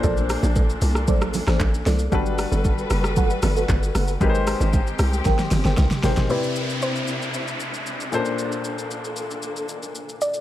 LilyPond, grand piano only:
\new Staff \with { instrumentName = "Grand piano" } { \time 4/4 \key c \lydian \tempo 4 = 115 <bes, bes d' a' c''>2.~ <bes, bes d' a' c''>8 r8 | <g d' fis' a' b'>1 | <aes ees' g' bes' b' c''>2.~ <aes ees' g' bes' b' c''>8 <aes ees' g' bes' c''>8 | <c c' e' g' d''>2.~ <c c' e' g' d''>8 <bes, bes des' d' a' c''>8~ |
<bes, bes des' d' a' c''>2.~ <bes, bes des' d' a' c''>8 r8 | }